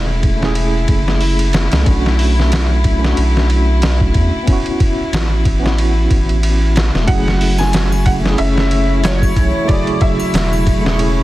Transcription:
0.00 0.86 E1 loud
0.00 0.35 A3 loud
0.00 0.37 C#4 medium
0.00 0.38 E4 medium
0.00 7.07 E4 medium
0.00 0.40 G#4 medium
0.23 kick medium
0.23 ride medium
0.36 1.80 A3 medium
0.36 1.82 C#4 medium
0.42 1.84 E4 medium
0.42 1.85 G#4 medium
0.42 snare medium
0.55 ride medium
0.88 1.69 F#1 medium
0.88 kick medium
0.88 ride medium
1.08 snare soft
1.21 open hi-hat medium
1.39 ride medium
1.53 snare loud
1.53 ride medium
1.72 1.85 C#2 medium
1.72 snare loud
1.72 ride medium
1.81 2.96 A3 medium
1.81 2.98 C#4 medium
1.86 3.14 B1 loud
1.86 2.99 D4 medium
1.86 kick loud
1.86 ride medium
1.91 3.00 F#4 loud
2.06 snare soft
2.19 open hi-hat medium
2.39 snare soft
2.52 snare loud
2.52 ride loud
2.84 kick medium
2.84 ride medium
2.99 4.42 A3 medium
2.99 4.44 C#4 medium
3.04 4.45 D4 medium
3.04 4.47 F#4 loud
3.04 snare medium
3.17 4.13 B1 medium
3.17 ride medium
3.37 snare medium
3.50 ride medium
3.82 snare loud
3.82 ride medium
4.01 kick medium
4.14 4.31 E2 loud
4.14 kick medium
4.14 ride medium
4.43 5.57 B3 medium
4.43 5.59 C#4 medium
4.47 5.60 E4 medium
4.47 kick loud
4.47 ride medium
4.53 5.62 F#4 loud
4.66 ride soft
4.80 kick loud
4.80 ride medium
5.13 6.08 A1 medium
5.13 snare loud
5.13 ride loud
5.45 kick loud
5.45 ride medium
5.59 7.03 B3 medium
5.59 7.04 C#4 medium
5.65 7.06 E4 medium
5.65 7.08 F#4 medium
5.65 snare medium
5.78 ride medium
6.10 6.91 A1 loud
6.10 kick medium
6.10 ride medium
6.29 ride soft
6.43 ride medium
6.76 snare loud
6.76 ride medium
6.95 7.07 E1 medium
6.95 snare medium
7.04 8.18 A3 medium
7.04 8.19 C#4 medium
7.04 7.61 F#5 loud
7.04 11.23 C#6 medium
7.08 8.36 F#1 loud
7.08 8.36 F#3 loud
7.08 11.23 E4 medium
7.08 8.21 E4 medium
7.08 kick loud
7.08 ride medium
7.12 8.22 G#4 loud
7.28 snare soft
7.41 open hi-hat medium
7.58 8.07 G#5 loud
7.58 snare soft
7.58 triangle medium
7.73 snare loud
7.73 ride loud
7.73 maracas medium
7.92 triangle medium
8.06 8.13 F#5 loud
8.06 kick loud
8.06 ride medium
8.20 9.63 A3 medium
8.20 9.65 C#4 medium
8.26 9.67 E4 medium
8.26 9.68 G#4 loud
8.26 snare medium
8.38 9.34 F#1 medium
8.38 9.01 C#4 medium
8.38 9.06 E5 loud
8.38 ride medium
8.58 snare medium
8.71 ride medium
9.03 9.34 F#3 loud
9.03 9.71 C#5 medium
9.03 snare loud
9.03 ride medium
9.03 maracas medium
9.22 kick medium
9.22 triangle medium
9.36 9.53 B1 medium
9.36 9.66 E3 medium
9.36 kick medium
9.36 ride medium
9.64 10.80 C#3 medium
9.64 10.79 A3 medium
9.64 9.99 D5 loud
9.69 10.97 F#3 loud
9.69 10.82 E4 medium
9.69 kick loud
9.69 ride medium
9.73 10.83 G#4 loud
9.87 ride soft
10.01 10.63 E5 loud
10.01 kick loud
10.01 ride medium
10.20 triangle medium
10.34 11.23 E1 loud
10.34 snare loud
10.34 ride medium
10.34 maracas medium
10.53 triangle medium
10.67 kick loud
10.67 ride medium
10.81 11.23 A3 medium
10.81 11.23 C#4 medium
10.86 11.23 E4 medium
10.86 11.23 G#4 loud
10.86 snare medium
10.99 11.23 C#4 medium
10.99 ride medium

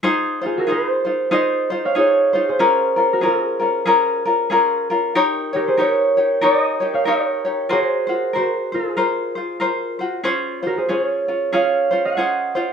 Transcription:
0.03 0.42 D#4 medium
0.03 0.41 F4 medium
0.03 0.43 G#4 medium
0.03 0.40 C5 medium
0.41 0.67 D#4 soft
0.41 0.67 F4 soft
0.41 0.67 C5 soft
0.46 0.63 F4 medium
0.46 0.70 G#4 medium
0.57 0.63 F#4 medium
0.57 0.65 A#4 medium
0.67 1.05 D#4 medium
0.67 1.05 F4 medium
0.67 1.06 G#4 medium
0.67 1.03 C5 medium
0.71 1.98 G#4 medium
0.71 1.33 C5 medium
1.05 1.30 D#4 soft
1.05 1.30 F4 soft
1.05 1.31 C5 soft
1.31 1.70 D#4 medium
1.31 1.71 F4 medium
1.31 1.70 G#4 medium
1.31 1.69 C5 medium
1.31 1.91 C5 medium
1.31 3.12 D#5 medium
1.70 1.95 D#4 soft
1.70 1.95 F4 soft
1.70 1.96 C5 soft
1.85 1.98 C#5 medium
1.85 3.19 F5 medium
1.95 2.34 D#4 medium
1.95 2.34 F4 medium
1.95 2.34 G#4 medium
1.95 2.48 G#4 medium
1.95 2.55 C#5 medium
2.33 2.59 D#4 soft
2.33 2.59 F4 soft
2.33 2.59 C5 soft
2.49 3.26 G#4 medium
2.49 4.47 C5 medium
2.59 2.97 C#4 medium
2.59 2.96 F4 medium
2.59 2.98 G#4 medium
2.59 2.95 A#4 medium
2.96 3.21 C#4 soft
2.96 3.22 F4 soft
2.96 3.22 A#4 soft
3.13 3.19 F#4 medium
3.13 3.19 A#4 medium
3.21 3.61 C#4 medium
3.21 3.59 F4 medium
3.21 3.61 G#4 medium
3.21 3.58 A#4 medium
3.26 5.79 F4 soft
3.26 5.53 G#4 medium
3.60 3.85 C#4 soft
3.60 3.85 F4 soft
3.60 3.86 A#4 soft
3.86 4.26 C#4 medium
3.86 4.26 F4 medium
3.86 4.25 G#4 medium
3.86 4.24 A#4 medium
4.25 4.50 C#4 soft
4.25 4.51 F4 soft
4.25 4.51 A#4 medium
4.50 4.90 C#4 medium
4.50 4.90 F4 medium
4.50 4.89 G#4 medium
4.50 4.89 A#4 medium
4.90 5.15 C#4 soft
4.90 5.15 F4 soft
4.90 5.14 A#4 medium
5.15 5.54 D#4 medium
5.15 5.53 G4 medium
5.15 5.54 A#4 medium
5.15 5.52 C#5 medium
5.53 5.77 D#4 soft
5.53 5.77 G4 soft
5.53 5.74 G4 medium
5.53 5.82 A#4 medium
5.53 5.78 C#5 soft
5.68 5.74 G#4 medium
5.68 5.74 C5 medium
5.77 6.17 D#4 medium
5.77 6.17 G4 medium
5.77 6.17 A#4 soft
5.77 6.16 C#5 medium
5.77 6.93 C#5 medium
5.83 6.44 A#4 medium
6.17 6.41 D#4 soft
6.17 6.41 G4 soft
6.17 6.42 C#5 soft
6.41 6.81 D#4 medium
6.41 6.80 G4 medium
6.41 6.81 A#4 medium
6.41 7.07 A#4 medium
6.41 6.79 C#5 medium
6.41 6.61 D5 loud
6.61 8.22 D#5 loud
6.80 7.05 D#4 soft
6.80 7.06 G4 soft
6.80 7.06 C#5 soft
6.94 7.00 C#5 medium
6.94 7.00 F5 loud
7.05 7.45 D#4 medium
7.05 7.45 G4 medium
7.05 7.45 A#4 medium
7.05 8.36 A#4 medium
7.05 7.44 C#5 medium
7.05 7.73 C#5 medium
7.45 7.69 D#4 soft
7.45 7.70 G4 soft
7.45 7.70 C#5 soft
7.69 8.08 F4 medium
7.69 8.08 F#4 medium
7.69 8.74 G#4 medium
7.69 8.06 A#4 medium
7.69 8.06 C5 medium
7.69 7.84 C#5 medium
7.84 9.71 C5 medium
8.07 8.34 F4 soft
8.07 8.33 F#4 soft
8.07 8.33 C5 medium
8.33 8.73 F#4 medium
8.33 8.46 F#4 medium
8.33 8.72 A#4 soft
8.33 8.47 A#4 medium
8.33 8.71 C5 medium
8.72 10.72 F4 medium
8.72 8.96 F4 soft
8.72 10.77 G#4 medium
8.72 8.96 C5 soft
8.97 9.36 F4 medium
8.97 9.36 A#4 medium
8.97 9.34 C5 medium
9.35 9.60 F4 soft
9.35 9.60 C5 soft
9.60 10.00 F4 medium
9.60 9.99 A#4 medium
9.60 9.98 C5 medium
9.99 10.23 F4 soft
9.99 10.24 F#4 soft
9.99 10.23 C5 medium
10.24 10.62 C#4 medium
10.24 10.62 F4 medium
10.24 10.63 G#4 medium
10.24 10.61 C5 medium
10.62 10.88 C#4 soft
10.62 10.88 F4 soft
10.62 10.72 F#4 medium
10.62 10.88 C5 soft
10.67 10.73 A#4 medium
10.78 10.89 G#4 medium
10.78 10.90 C5 medium
10.89 11.28 C#4 medium
10.89 11.27 F4 medium
10.89 11.27 G#4 soft
10.89 12.73 G#4 medium
10.89 11.01 C5 medium
11.01 11.54 C#5 medium
11.28 11.52 C#4 soft
11.28 11.52 F4 soft
11.53 11.91 C#4 medium
11.53 11.91 F4 medium
11.53 11.91 G#4 medium
11.53 12.73 C#5 medium
11.53 12.12 F5 loud
11.91 12.17 C#4 soft
11.91 12.17 F4 soft
11.91 12.16 C5 soft
12.05 12.73 D#5 medium
12.05 12.73 F#5 medium
12.17 12.56 C#4 medium
12.17 12.55 F4 medium
12.17 12.55 G#4 medium
12.17 12.54 C5 medium
12.55 12.73 C#4 soft
12.55 12.73 F4 medium
12.55 12.73 C5 soft

